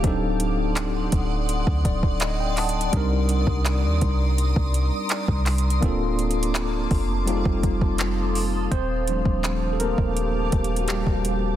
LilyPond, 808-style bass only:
\new Staff \with { instrumentName = "808-style bass" } { \clef bass \time 4/4 \key ees \lydian \tempo 4 = 83 d,,4. d,,8. d,16 d,,4. | c,8. c,8 ees,16 c,8. c,8 r8 c,8. | d,,4. f,,8. f,,16 f,,4. | ees,,8. ees,,4 ees,,8. ees,,8. ees,,8. | }